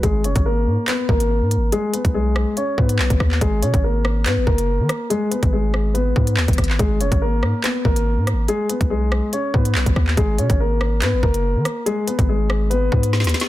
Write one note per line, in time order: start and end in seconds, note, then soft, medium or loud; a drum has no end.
0.03 0.26 G#1 loud
0.03 0.23 G#3 medium
0.03 0.23 G#4 medium
0.03 kick loud
0.03 closed hi-hat medium
0.24 0.35 F#1 loud
0.24 0.45 C#4 medium
0.24 0.44 C#5 medium
0.24 closed hi-hat medium
0.36 0.68 G#1 loud
0.36 kick loud
0.36 closed hi-hat medium
0.46 0.86 A#3 medium
0.46 0.85 A#4 medium
0.67 0.77 G#2 loud
0.88 1.08 B3 medium
0.88 1.08 B4 medium
0.88 clap loud
0.88 closed hi-hat medium
1.09 1.43 G#1 loud
1.09 1.69 A#3 medium
1.09 1.69 A#4 medium
1.09 kick medium
1.20 closed hi-hat medium
1.41 1.58 G#2 loud
1.51 closed hi-hat medium
1.57 1.72 G#1 loud
1.72 1.92 G#3 medium
1.72 1.92 G#4 loud
1.72 closed hi-hat medium
1.93 2.14 B3 medium
1.93 2.13 B4 medium
1.93 closed hi-hat medium
2.05 2.45 B1 loud
2.05 kick loud
2.05 closed hi-hat medium
2.14 2.55 G#3 medium
2.14 2.54 G#4 loud
2.36 cross-stick medium
2.57 2.77 C#4 medium
2.57 2.77 C#5 medium
2.57 closed hi-hat medium
2.78 3.01 G#2 loud
2.78 3.38 B3 medium
2.78 3.38 B4 medium
2.78 kick medium
2.89 closed hi-hat medium
2.99 3.10 B1 loud
2.99 clap loud
3.10 3.20 G#1 loud
3.10 kick medium
3.10 closed hi-hat medium
3.20 3.40 D#2 loud
3.20 kick medium
3.20 cross-stick loud
3.31 clap medium
3.41 3.64 G#1 loud
3.41 3.61 G#3 medium
3.41 3.61 G#4 loud
3.41 kick loud
3.41 closed hi-hat medium
3.62 3.73 B2 loud
3.62 3.83 C#4 medium
3.62 3.82 C#5 medium
3.62 closed hi-hat medium
3.74 4.27 G#1 loud
3.74 kick loud
3.74 closed hi-hat medium
3.84 4.24 A#3 medium
3.84 4.24 A#4 medium
4.05 cross-stick loud
4.26 4.38 G#2 medium
4.26 4.46 B3 medium
4.26 4.46 B4 medium
4.26 clap loud
4.26 closed hi-hat medium
4.37 4.46 G#1 medium
4.47 4.81 F#1 loud
4.47 5.07 A#3 medium
4.47 5.06 A#4 medium
4.47 kick medium
4.58 closed hi-hat medium
4.79 4.89 D#3 loud
4.89 cross-stick loud
4.89 closed hi-hat medium
5.10 5.30 G#3 medium
5.10 5.30 G#4 loud
5.10 closed hi-hat medium
5.31 5.51 B3 medium
5.31 5.51 B4 medium
5.31 closed hi-hat medium
5.43 6.13 G#1 loud
5.43 kick loud
5.43 closed hi-hat medium
5.53 5.93 G#3 medium
5.53 5.92 G#4 medium
5.74 cross-stick medium
5.94 6.75 B3 medium
5.94 6.75 B4 medium
5.94 closed hi-hat medium
6.16 6.39 G#2 loud
6.16 kick medium
6.27 closed hi-hat medium
6.37 6.48 D#2 loud
6.37 clap loud
6.48 6.58 G#1 loud
6.48 kick loud
6.48 closed hi-hat medium
6.53 closed hi-hat medium
6.58 6.78 G#1 loud
6.58 kick medium
6.58 cross-stick loud
6.58 closed hi-hat medium
6.64 closed hi-hat medium
6.69 clap medium
6.79 7.02 G#1 loud
6.79 6.99 G#3 medium
6.79 6.99 G#4 medium
6.79 kick loud
6.79 closed hi-hat medium
7.00 7.11 F#1 loud
7.00 7.21 C#4 medium
7.00 7.20 C#5 medium
7.00 closed hi-hat medium
7.12 7.44 G#1 loud
7.12 kick loud
7.12 closed hi-hat medium
7.22 7.62 A#3 medium
7.22 7.61 A#4 medium
7.43 7.53 G#2 loud
7.43 cross-stick medium
7.64 7.84 B3 medium
7.64 7.83 B4 medium
7.64 clap loud
7.64 closed hi-hat medium
7.85 8.19 G#1 loud
7.85 8.45 A#3 medium
7.85 8.45 A#4 medium
7.85 kick medium
7.96 closed hi-hat medium
8.17 8.34 G#2 loud
8.27 cross-stick loud
8.27 closed hi-hat medium
8.33 8.48 G#1 loud
8.48 8.69 G#3 medium
8.48 8.68 G#4 loud
8.48 closed hi-hat medium
8.69 8.90 B3 medium
8.69 8.89 B4 medium
8.69 closed hi-hat medium
8.81 9.21 B1 loud
8.81 kick loud
8.81 closed hi-hat medium
8.90 9.31 G#3 medium
8.90 9.30 G#4 loud
9.12 cross-stick loud
9.33 9.53 C#4 medium
9.33 9.53 C#5 medium
9.33 closed hi-hat medium
9.54 9.77 G#2 loud
9.54 10.14 B3 medium
9.54 10.14 B4 medium
9.54 kick medium
9.65 closed hi-hat medium
9.75 9.86 B1 loud
9.75 clap loud
9.86 9.96 G#1 loud
9.86 kick loud
9.86 closed hi-hat medium
9.96 10.17 D#2 loud
9.96 kick medium
9.96 cross-stick loud
10.07 clap medium
10.17 10.40 G#1 loud
10.17 10.37 G#3 medium
10.17 10.37 G#4 loud
10.17 kick loud
10.17 closed hi-hat medium
10.38 10.49 B2 loud
10.38 10.59 C#4 medium
10.38 10.58 C#5 medium
10.38 closed hi-hat medium
10.50 11.03 G#1 loud
10.50 kick loud
10.50 closed hi-hat medium
10.60 11.00 A#3 medium
10.60 11.00 A#4 medium
10.81 cross-stick medium
11.02 11.15 G#2 loud
11.02 11.22 B3 medium
11.02 11.22 B4 medium
11.02 clap loud
11.02 closed hi-hat medium
11.13 11.23 G#1 loud
11.23 11.57 F#1 loud
11.23 11.83 A#3 medium
11.23 11.82 A#4 medium
11.23 kick medium
11.34 closed hi-hat medium
11.55 11.65 D#3 medium
11.65 cross-stick loud
11.65 closed hi-hat medium
11.86 12.06 G#3 medium
11.86 12.06 G#4 loud
11.86 closed hi-hat medium
12.07 12.28 B3 medium
12.07 12.27 B4 medium
12.07 closed hi-hat medium
12.19 12.89 G#1 loud
12.19 kick loud
12.19 closed hi-hat medium
12.29 12.69 G#3 medium
12.29 12.68 G#4 medium
12.50 cross-stick loud
12.70 13.49 B3 medium
12.70 13.49 B4 medium
12.70 closed hi-hat medium
12.92 13.26 G#2 loud
12.92 kick medium
13.03 closed hi-hat medium
13.13 snare medium
13.20 snare medium
13.24 13.34 D#2 loud
13.24 snare medium
13.24 closed hi-hat medium
13.29 closed hi-hat medium
13.34 snare medium
13.34 closed hi-hat medium
13.40 snare loud
13.40 closed hi-hat medium